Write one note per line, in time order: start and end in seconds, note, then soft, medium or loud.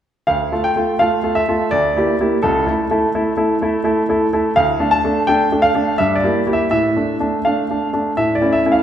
0.27 0.52 D2 soft
0.27 0.60 F5 medium
0.52 0.69 A3 soft
0.52 0.70 F4 soft
0.52 0.70 A4 soft
0.64 1.00 G5 medium
0.76 0.93 A3 soft
0.76 0.94 F4 soft
0.76 0.94 A4 soft
0.99 1.17 A3 soft
0.99 1.18 F4 soft
0.99 1.18 A4 soft
0.99 1.32 F5 medium
1.23 1.41 A3 soft
1.23 1.41 F4 soft
1.23 1.41 A4 soft
1.35 1.71 E5 medium
1.48 1.65 A3 soft
1.48 1.66 F4 soft
1.48 1.66 A4 soft
1.71 1.95 D2 soft
1.71 2.14 D5 medium
1.97 2.14 A#3 soft
1.97 2.13 E4 soft
1.97 2.14 G4 soft
2.20 2.37 A#3 soft
2.20 2.37 E4 soft
2.20 2.37 G4 soft
2.43 2.67 C#2 soft
2.43 2.65 A4 medium
2.67 2.84 A3 soft
2.67 2.84 E4 soft
2.67 2.84 A4 soft
2.91 3.08 A3 soft
2.91 3.08 E4 soft
2.91 3.08 A4 soft
3.15 3.32 A3 soft
3.15 3.32 E4 soft
3.15 3.32 A4 soft
3.37 3.54 A3 soft
3.37 3.55 E4 soft
3.37 3.55 A4 soft
3.61 3.79 A3 soft
3.61 3.79 E4 soft
3.61 3.79 A4 soft
3.84 4.01 A3 soft
3.84 4.02 E4 soft
3.84 4.02 A4 soft
4.09 4.26 A3 soft
4.09 4.26 E4 soft
4.09 4.27 A4 soft
4.33 4.50 A3 soft
4.33 4.50 E4 soft
4.33 4.50 A4 soft
4.56 4.79 D2 medium
4.56 4.88 F5 medium
4.79 4.97 A3 soft
4.79 4.97 D4 soft
4.79 4.97 A4 soft
4.91 5.27 A5 medium
5.04 5.21 A3 soft
5.04 5.21 D4 soft
5.04 5.21 A4 soft
5.27 5.45 A3 soft
5.27 5.45 D4 soft
5.27 5.45 A4 soft
5.27 5.63 G5 medium
5.52 5.69 A3 soft
5.52 5.69 D4 soft
5.52 5.69 A4 soft
5.62 5.98 F5 medium
5.74 5.92 A3 soft
5.74 5.92 D4 soft
5.74 5.92 A4 soft
5.98 6.23 G2 soft
5.98 6.17 E5 medium
6.15 6.38 D5 medium
6.24 6.41 A#3 soft
6.24 6.41 E4 soft
6.24 6.41 G4 soft
6.46 6.65 A#3 soft
6.46 6.65 E4 soft
6.46 6.65 G4 soft
6.53 6.69 E5 medium
6.71 6.95 A2 soft
6.71 7.16 E5 medium
6.97 7.14 A3 soft
6.97 7.14 D4 soft
7.20 7.38 A3 soft
7.20 7.38 D4 soft
7.45 7.63 A3 soft
7.45 7.64 D4 soft
7.45 7.89 F5 medium
7.70 7.88 A3 soft
7.70 7.88 D4 soft
7.93 8.11 A3 soft
7.93 8.12 D4 soft
8.17 8.42 A2 soft
8.17 8.36 E5 medium
8.35 8.55 D5 soft
8.41 8.60 A3 soft
8.41 8.60 C#4 soft
8.41 8.60 E4 soft
8.52 8.73 E5 medium
8.66 8.83 A3 soft
8.66 8.83 C#4 soft
8.66 8.83 E4 soft
8.72 8.83 F5 medium